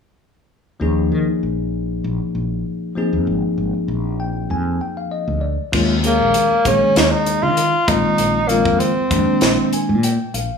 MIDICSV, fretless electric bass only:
0, 0, Header, 1, 3, 480
1, 0, Start_track
1, 0, Tempo, 614502
1, 640, Time_signature, 4, 2, 24, 8
1, 8263, End_track
2, 0, Start_track
2, 0, Title_t, "Fretless electric bass"
2, 0, Program_c, 0, 35
2, 632, Note_on_c, 0, 39, 70
2, 855, Note_off_c, 0, 39, 0
2, 872, Note_on_c, 0, 51, 71
2, 991, Note_off_c, 0, 51, 0
2, 1116, Note_on_c, 0, 34, 60
2, 1567, Note_off_c, 0, 34, 0
2, 1596, Note_on_c, 0, 34, 77
2, 1713, Note_off_c, 0, 34, 0
2, 1834, Note_on_c, 0, 34, 66
2, 2057, Note_off_c, 0, 34, 0
2, 2443, Note_on_c, 0, 41, 63
2, 2549, Note_off_c, 0, 41, 0
2, 2554, Note_on_c, 0, 32, 77
2, 2672, Note_off_c, 0, 32, 0
2, 2793, Note_on_c, 0, 32, 69
2, 2912, Note_off_c, 0, 32, 0
2, 3032, Note_on_c, 0, 34, 72
2, 3485, Note_off_c, 0, 34, 0
2, 3516, Note_on_c, 0, 41, 72
2, 3738, Note_off_c, 0, 41, 0
2, 4121, Note_on_c, 0, 38, 67
2, 4343, Note_off_c, 0, 38, 0
2, 4478, Note_on_c, 0, 39, 73
2, 4815, Note_off_c, 0, 39, 0
2, 4842, Note_on_c, 0, 34, 71
2, 4948, Note_off_c, 0, 34, 0
2, 5194, Note_on_c, 0, 34, 72
2, 5312, Note_off_c, 0, 34, 0
2, 5438, Note_on_c, 0, 39, 73
2, 5554, Note_off_c, 0, 39, 0
2, 5803, Note_on_c, 0, 51, 77
2, 6024, Note_off_c, 0, 51, 0
2, 6156, Note_on_c, 0, 34, 76
2, 6273, Note_off_c, 0, 34, 0
2, 6394, Note_on_c, 0, 34, 74
2, 6732, Note_off_c, 0, 34, 0
2, 6757, Note_on_c, 0, 41, 76
2, 6866, Note_off_c, 0, 41, 0
2, 7113, Note_on_c, 0, 41, 66
2, 7231, Note_off_c, 0, 41, 0
2, 7358, Note_on_c, 0, 34, 77
2, 7474, Note_off_c, 0, 34, 0
2, 7727, Note_on_c, 0, 46, 77
2, 7946, Note_off_c, 0, 46, 0
2, 8077, Note_on_c, 0, 34, 70
2, 8193, Note_off_c, 0, 34, 0
2, 8263, End_track
3, 0, Start_track
3, 0, Title_t, "Muted fretless electric bass strokes"
3, 1000, Note_on_c, 9, 29, 27
3, 1078, Note_off_c, 9, 29, 0
3, 2318, Note_on_c, 9, 29, 28
3, 2396, Note_off_c, 9, 29, 0
3, 2923, Note_on_c, 9, 29, 31
3, 3001, Note_off_c, 9, 29, 0
3, 5085, Note_on_c, 9, 29, 30
3, 5163, Note_off_c, 9, 29, 0
3, 5323, Note_on_c, 9, 29, 33
3, 5401, Note_off_c, 9, 29, 0
3, 5680, Note_on_c, 9, 29, 31
3, 5758, Note_off_c, 9, 29, 0
3, 7003, Note_on_c, 9, 29, 31
3, 7081, Note_off_c, 9, 29, 0
3, 7245, Note_on_c, 9, 29, 32
3, 7323, Note_off_c, 9, 29, 0
3, 7601, Note_on_c, 9, 29, 31
3, 7679, Note_off_c, 9, 29, 0
3, 8263, End_track
0, 0, End_of_file